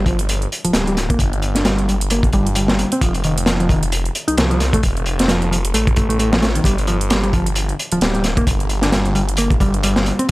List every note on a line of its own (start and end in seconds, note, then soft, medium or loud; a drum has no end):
0.00 0.47 G1 medium
0.06 0.18 F3 medium
0.06 kick medium
0.06 closed hi-hat medium
0.19 closed hi-hat medium
0.29 closed hi-hat medium
0.42 closed hi-hat soft
0.52 closed hi-hat medium
0.64 0.72 D1 soft
0.64 0.72 F3 loud
0.64 closed hi-hat medium
0.73 1.15 D1 medium
0.73 0.86 G3 medium
0.73 snare loud
0.73 closed hi-hat medium
0.87 0.97 G3 medium
0.87 closed hi-hat soft
0.97 snare soft
0.97 closed hi-hat medium
1.10 1.17 A#3 loud
1.10 kick medium
1.10 closed hi-hat medium
1.19 2.28 G1 medium
1.19 kick loud
1.19 closed hi-hat medium
1.33 closed hi-hat soft
1.42 closed hi-hat medium
1.55 1.63 D4 medium
1.55 snare soft
1.55 closed hi-hat medium
1.65 1.87 G3 medium
1.65 snare loud
1.65 closed hi-hat medium
1.65 closed hi-hat soft
1.79 closed hi-hat soft
1.89 1.94 G3 medium
1.89 closed hi-hat medium
2.01 closed hi-hat medium
2.10 2.23 A#3 medium
2.10 closed hi-hat medium
2.23 kick medium
2.23 closed hi-hat soft
2.33 2.85 G1 loud
2.33 2.46 G3 loud
2.33 kick medium
2.33 closed hi-hat medium
2.47 closed hi-hat medium
2.55 2.91 G3 medium
2.55 closed hi-hat medium
2.68 snare loud
2.68 closed hi-hat soft
2.79 closed hi-hat medium
2.92 2.99 C4 loud
2.92 closed hi-hat medium
3.01 4.10 F1 medium
3.01 3.11 F3 medium
3.01 kick loud
3.01 closed hi-hat medium
3.14 closed hi-hat soft
3.24 3.34 D#3 medium
3.24 closed hi-hat medium
3.38 closed hi-hat medium
3.46 3.59 F3 medium
3.46 snare loud
3.46 closed hi-hat medium
3.60 3.69 F3 loud
3.60 closed hi-hat soft
3.69 3.82 D#3 loud
3.69 kick medium
3.69 closed hi-hat medium
3.83 closed hi-hat medium
3.92 closed hi-hat medium
3.92 closed hi-hat soft
4.05 closed hi-hat soft
4.15 closed hi-hat medium
4.28 4.36 C2 soft
4.28 4.35 D#4 loud
4.28 closed hi-hat medium
4.37 4.78 C2 medium
4.37 4.49 F3 medium
4.37 snare loud
4.37 closed hi-hat medium
4.50 4.60 F3 loud
4.50 closed hi-hat soft
4.60 snare soft
4.60 closed hi-hat medium
4.73 4.81 A3 loud
4.73 kick medium
4.73 closed hi-hat medium
4.83 5.73 F1 medium
4.83 kick loud
4.83 closed hi-hat medium
4.83 closed hi-hat soft
4.97 closed hi-hat soft
5.06 closed hi-hat medium
5.19 5.26 C4 medium
5.19 snare medium
5.19 closed hi-hat medium
5.28 5.51 F3 medium
5.28 snare loud
5.28 closed hi-hat medium
5.28 closed hi-hat soft
5.42 closed hi-hat soft
5.51 5.57 F3 medium
5.51 closed hi-hat medium
5.65 closed hi-hat medium
5.74 6.60 A1 medium
5.74 5.87 A3 medium
5.74 closed hi-hat soft
5.74 closed hi-hat medium
5.87 kick medium
5.87 closed hi-hat soft
5.96 6.08 A3 medium
5.96 kick loud
5.96 closed hi-hat medium
6.09 6.19 A3 medium
6.09 closed hi-hat medium
6.19 6.29 A3 loud
6.19 closed hi-hat medium
6.19 closed hi-hat soft
6.32 6.39 F3 medium
6.32 snare loud
6.32 closed hi-hat soft
6.42 6.48 A3 medium
6.42 snare loud
6.42 closed hi-hat medium
6.55 6.64 D#3 medium
6.55 closed hi-hat medium
6.64 7.73 G1 medium
6.64 6.74 G3 medium
6.64 kick loud
6.64 closed hi-hat soft
6.64 closed hi-hat medium
6.78 closed hi-hat soft
6.87 6.97 F3 medium
6.87 closed hi-hat medium
7.01 closed hi-hat medium
7.10 7.22 G3 medium
7.10 snare loud
7.10 closed hi-hat medium
7.10 closed hi-hat soft
7.24 7.33 G3 medium
7.24 closed hi-hat soft
7.33 7.46 F3 loud
7.33 kick medium
7.33 closed hi-hat medium
7.46 closed hi-hat medium
7.55 closed hi-hat medium
7.55 closed hi-hat soft
7.69 closed hi-hat soft
7.79 closed hi-hat medium
7.92 8.00 D1 soft
7.92 7.99 F3 loud
7.92 closed hi-hat medium
8.01 8.42 D1 medium
8.01 8.14 G3 medium
8.01 snare loud
8.01 closed hi-hat soft
8.01 closed hi-hat medium
8.15 8.24 G3 medium
8.15 closed hi-hat soft
8.24 snare soft
8.24 closed hi-hat medium
8.37 8.44 A#3 loud
8.37 kick loud
8.37 closed hi-hat medium
8.47 9.55 G1 medium
8.47 kick loud
8.47 closed hi-hat soft
8.47 closed hi-hat medium
8.60 closed hi-hat soft
8.69 closed hi-hat medium
8.82 8.90 D4 medium
8.82 snare soft
8.82 closed hi-hat medium
8.92 9.14 G3 medium
8.92 snare loud
8.92 closed hi-hat soft
8.92 closed hi-hat medium
9.05 closed hi-hat soft
9.15 9.21 G3 medium
9.15 closed hi-hat medium
9.29 closed hi-hat medium
9.37 9.51 A#3 medium
9.37 closed hi-hat medium
9.38 closed hi-hat soft
9.50 kick loud
9.50 closed hi-hat soft
9.60 10.12 G1 loud
9.60 9.73 G3 loud
9.60 kick medium
9.60 closed hi-hat medium
9.74 closed hi-hat medium
9.83 10.18 G3 medium
9.83 closed hi-hat medium
9.83 closed hi-hat soft
9.96 snare loud
9.96 closed hi-hat soft
10.06 closed hi-hat medium
10.19 10.26 C4 loud
10.19 closed hi-hat medium